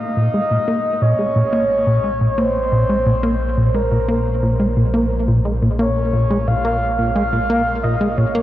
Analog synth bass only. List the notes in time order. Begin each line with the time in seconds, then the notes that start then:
0.17 A#2
0.34 G#3
0.51 A#2
0.68 A#3
1.02 A#2
1.19 G#3
1.36 A#2
1.53 A#3
1.87 A#2
2.04 G#3
2.21 A#2
2.38 A#3
2.72 A#2
2.89 G#3
3.06 A#2
3.23 A#3
3.57 A#2
3.75 G#3
3.92 A#2
4.09 A#3
4.43 A#2
4.60 G#3
4.77 A#2
4.94 A#3
5.28 A#2
5.45 G#3
5.62 A#2
5.79 A#3
6.13 A#2
6.30 G#3
6.47 A#2
6.64 A#3
6.98 A#2
7.15 G#3
7.32 A#2
7.50 A#3
7.84 A#2
8.01 G#3
8.18 A#2
8.35 A#3